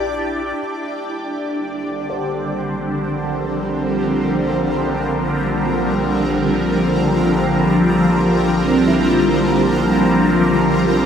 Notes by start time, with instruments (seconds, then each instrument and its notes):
Already playing: sub bass A#1, ambient pad D4 E4 G4 D5
0.57 sub bass A#1, ambient pad D3, synth drone A#3
0.72 ambient pad G3
0.93 ambient pad C4
2.10 felt piano C5
2.26 ambient pad F3
2.46 ambient pad A#4
5.65 felt piano F3
8.87 felt piano E4